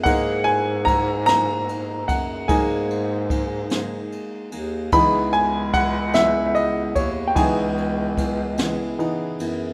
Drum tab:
RD |xxxxxx|xxxxxx|xxxxxx|xxxxxx|
SD |---o--|---o--|---o--|---o--|
BD |o-o--o|o-o---|o-o--o|o-o---|